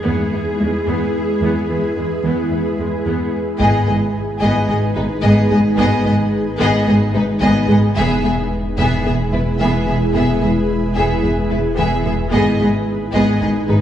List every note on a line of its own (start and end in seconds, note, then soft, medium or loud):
0.00 3.56 G#3 medium
0.00 3.60 E4 medium
0.00 3.36 G#4 medium
0.00 3.56 G#4 medium
0.00 3.56 B4 medium
0.05 0.14 E2 medium
0.05 0.22 E3 medium
0.05 0.30 B3 medium
0.33 0.41 E2 soft
0.33 0.41 B3 soft
0.33 0.49 E4 medium
0.60 0.69 E2 soft
0.60 0.68 G#3 soft
0.60 0.76 G#3 medium
0.87 0.95 E2 soft
0.87 1.04 E3 medium
0.87 1.12 B3 soft
1.41 1.49 E2 medium
1.41 1.58 E3 medium
1.41 1.67 B3 soft
1.69 1.77 E2 soft
1.69 1.78 B3 soft
1.69 1.86 E4 soft
1.96 2.04 E2 soft
1.96 2.06 G#3 soft
1.96 2.13 B3 soft
2.23 2.31 E2 soft
2.23 2.40 E3 medium
2.23 2.49 B3 soft
2.51 2.59 E2 soft
2.51 2.60 B3 soft
2.51 2.67 E4 soft
2.78 2.87 E2 soft
2.78 2.94 G#3 soft
2.78 2.87 G#3 soft
3.06 3.14 E2 soft
3.06 3.22 E3 medium
3.06 3.31 B3 soft
3.59 3.68 G#1 soft
3.59 7.97 G#1 medium
3.59 3.68 G#2 soft
3.59 7.92 G#3 medium
3.59 3.77 G#3 medium
3.59 3.85 B3 soft
3.59 7.92 D#4 medium
3.59 3.85 G#4 medium
3.59 7.92 G#4 medium
3.59 7.92 B4 medium
3.59 3.85 D#5 soft
3.87 3.95 G#1 soft
3.87 3.96 G#2 soft
3.87 3.95 B3 soft
3.87 4.04 B3 soft
3.87 3.95 G#4 soft
3.87 3.95 D#5 soft
4.40 4.50 G#1 soft
4.40 4.50 G#2 medium
4.40 4.58 G#3 medium
4.40 4.67 B3 soft
4.40 4.66 G#4 soft
4.40 4.67 D#5 medium
4.69 4.77 G#1 soft
4.69 4.77 G#2 soft
4.69 4.77 B3 soft
4.69 4.86 D#4 medium
4.69 4.77 G#4 soft
4.69 4.77 D#5 soft
4.95 5.05 G#1 soft
4.95 5.04 G#2 soft
4.95 5.04 B3 soft
4.95 5.03 D#4 soft
4.95 5.13 G#4 soft
4.95 5.03 B4 soft
5.22 5.32 G#1 medium
5.22 5.32 G#2 medium
5.22 5.40 G#3 medium
5.22 5.48 B3 medium
5.22 5.49 G#4 medium
5.22 5.48 D#5 medium
5.50 5.59 G#1 soft
5.50 5.59 G#2 soft
5.50 5.59 B3 soft
5.50 5.59 G#4 soft
5.50 5.67 G#4 soft
5.50 5.58 D#5 soft
5.78 5.86 G#1 medium
5.78 5.86 G#2 medium
5.78 5.94 G#3 medium
5.78 6.03 B3 medium
5.78 6.03 G#4 medium
5.78 6.04 D#5 medium
6.05 6.13 G#1 soft
6.05 6.13 G#2 soft
6.05 6.13 B3 soft
6.05 6.22 B3 medium
6.05 6.14 G#4 soft
6.05 6.14 D#5 soft
6.59 6.68 G#1 medium
6.59 6.68 G#2 medium
6.59 6.76 G#3 medium
6.59 6.85 B3 medium
6.59 6.85 G#4 medium
6.59 6.85 D#5 medium
6.87 6.96 G#1 soft
6.87 6.96 G#2 soft
6.87 6.95 B3 soft
6.87 7.03 D#4 medium
6.87 6.96 G#4 soft
6.87 6.95 D#5 soft
7.14 7.23 G#1 soft
7.14 7.23 G#2 soft
7.14 7.22 B3 soft
7.14 7.23 D#4 soft
7.14 7.31 G#4 medium
7.14 7.23 B4 soft
7.41 7.50 G#1 medium
7.41 7.50 G#2 medium
7.41 7.58 G#3 medium
7.41 7.67 B3 medium
7.41 7.67 G#4 medium
7.41 7.67 D#5 medium
7.69 7.77 G#1 soft
7.69 7.77 G#2 soft
7.69 7.77 B3 medium
7.69 7.85 G#4 medium
7.69 7.78 G#4 medium
7.69 7.77 D#5 soft
7.96 12.34 E1 medium
7.96 8.04 E1 medium
7.96 8.05 E2 medium
7.96 8.13 E3 medium
7.96 12.29 G#3 medium
7.96 8.22 B3 medium
7.96 12.32 E4 medium
7.96 12.29 G#4 medium
7.96 8.22 G#4 medium
7.96 12.29 B4 medium
7.96 8.22 E5 medium
8.23 8.32 E1 soft
8.23 8.31 E2 soft
8.23 8.40 G#3 soft
8.23 8.32 B3 soft
8.23 8.32 G#4 soft
8.23 8.32 E5 soft
8.78 8.86 E1 medium
8.78 8.86 E2 medium
8.78 8.95 E3 medium
8.78 9.04 B3 medium
8.78 9.04 G#4 medium
8.78 9.03 E5 medium
9.05 9.13 E1 soft
9.05 9.13 E2 soft
9.05 9.13 B3 soft
9.05 9.22 B3 medium
9.05 9.14 G#4 soft
9.05 9.14 E5 soft
9.32 9.40 E1 soft
9.32 9.40 E2 soft
9.32 9.41 B3 soft
9.32 9.49 E4 medium
9.32 9.41 E4 soft
9.32 9.41 B4 soft
9.60 9.68 E1 medium
9.60 9.68 E2 soft
9.60 9.77 E3 medium
9.60 9.85 B3 medium
9.60 9.85 G#4 soft
9.60 9.85 E5 soft
9.87 9.95 E1 soft
9.87 9.95 E2 soft
9.87 9.95 B3 soft
9.87 10.04 E4 medium
9.87 9.95 G#4 soft
9.87 9.96 E5 soft
10.14 10.23 E1 medium
10.14 10.22 E2 soft
10.14 10.31 E3 medium
10.14 10.39 B3 soft
10.14 10.39 G#4 soft
10.14 10.40 E5 soft
10.41 10.50 E1 soft
10.41 10.50 E2 soft
10.41 10.58 G#3 soft
10.41 10.50 B3 soft
10.41 10.49 G#4 soft
10.41 10.50 E5 soft
10.96 11.04 E1 soft
10.96 11.04 E2 soft
10.96 11.13 E3 medium
10.96 11.22 B3 soft
10.96 11.21 G#4 soft
10.96 11.21 E5 soft
11.22 11.31 E1 soft
11.22 11.31 E2 soft
11.22 11.32 B3 soft
11.22 11.40 B3 soft
11.22 11.30 G#4 soft
11.22 11.31 E5 soft
11.50 11.58 E1 soft
11.50 11.58 E2 soft
11.50 11.58 B3 soft
11.50 11.58 E4 soft
11.50 11.67 E4 soft
11.50 11.59 B4 soft
11.77 11.86 E1 soft
11.77 11.85 E2 soft
11.77 11.94 E3 medium
11.77 12.03 B3 soft
11.77 12.03 G#4 soft
11.77 12.03 E5 soft
12.04 12.13 E1 soft
12.04 12.12 E2 soft
12.04 12.13 B3 soft
12.04 12.22 E4 soft
12.04 12.13 G#4 soft
12.04 12.14 E5 soft
12.32 12.40 G#1 medium
12.32 13.81 G#1 medium
12.32 12.40 G#2 soft
12.32 13.81 G#3 medium
12.32 12.50 G#3 medium
12.32 12.57 B3 soft
12.32 13.81 D#4 medium
12.32 12.57 G#4 medium
12.32 13.81 G#4 medium
12.32 13.81 B4 medium
12.32 12.58 D#5 medium
12.59 12.68 G#1 soft
12.59 12.68 G#2 soft
12.59 12.67 B3 soft
12.59 12.77 B3 medium
12.59 12.67 G#4 soft
12.59 12.67 D#5 soft
13.13 13.22 G#1 soft
13.13 13.22 G#2 medium
13.13 13.31 G#3 medium
13.13 13.39 B3 medium
13.13 13.39 G#4 medium
13.13 13.39 D#5 medium
13.41 13.49 G#1 soft
13.41 13.50 G#2 soft
13.41 13.49 B3 soft
13.41 13.58 D#4 medium
13.41 13.50 G#4 soft
13.41 13.49 D#5 soft
13.68 13.76 G#1 soft
13.68 13.77 G#2 soft
13.68 13.76 B3 soft
13.68 13.77 D#4 soft
13.68 13.81 G#4 medium
13.68 13.77 B4 soft